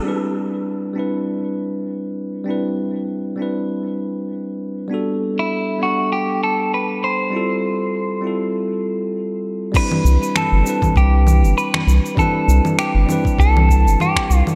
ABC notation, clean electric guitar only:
X:1
M:4/4
L:1/16
Q:"Swing 16ths" 1/4=99
K:C
V:1 name="Clean electric guitar"
z16 | z16 | z3 E3 ^F2 G2 A2 B2 c2- | c12 z4 |
B4 A4 G4 B4 | A4 G4 A4 G3 z |]